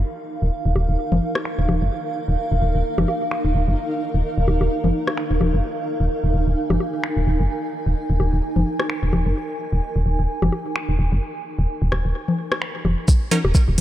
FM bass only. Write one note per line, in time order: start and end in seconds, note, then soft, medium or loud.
0.42 0.50 D#1 medium
0.66 0.74 D#1 loud
0.76 0.86 D#1 medium
0.89 0.97 D#1 medium
1.12 1.20 F#1 medium
1.59 1.67 D#1 medium
1.69 1.79 D#1 loud
1.82 1.90 F#1 medium
2.28 2.36 D#1 medium
2.52 2.60 D#1 loud
2.62 2.72 D#1 medium
2.75 2.83 D#1 medium
2.98 3.06 F#1 medium
3.45 3.53 D#1 medium
3.55 3.65 D#1 medium
3.68 3.76 F#1 medium
4.14 4.22 D#1 medium
4.38 4.46 D#1 loud
4.48 4.58 D#1 medium
4.61 4.69 D#1 medium
4.84 4.92 F#1 medium
5.31 5.39 D#1 medium
5.41 5.51 D#1 medium
5.54 5.62 F#1 loud
6.00 6.08 D#1 medium
6.24 6.32 D#1 medium
6.34 6.44 D#1 medium
6.47 6.55 D#1 medium
6.70 6.78 F#1 medium
7.17 7.25 D#1 medium
7.27 7.37 D#1 loud
7.40 7.48 F#1 loud
7.87 7.95 D#1 medium
8.10 8.18 D#1 medium
8.20 8.30 D#1 medium
8.33 8.41 D#1 medium
8.56 8.64 F#1 medium
9.03 9.11 D#1 medium
9.13 9.23 D#1 loud
9.26 9.34 F#1 medium
9.73 9.81 D#1 loud
9.96 10.04 D#1 loud
10.06 10.16 D#1 medium
10.19 10.27 D#1 medium
10.42 10.50 F#1 medium
10.89 10.97 D#1 medium
10.99 11.09 D#1 loud
11.12 11.20 F#1 loud
11.59 11.67 D#1 loud
11.82 11.90 D#1 loud
11.92 12.02 D#1 medium
12.05 12.13 D#1 medium
12.85 12.95 F1 medium
13.45 13.53 D#1 loud
13.68 13.76 D#1 loud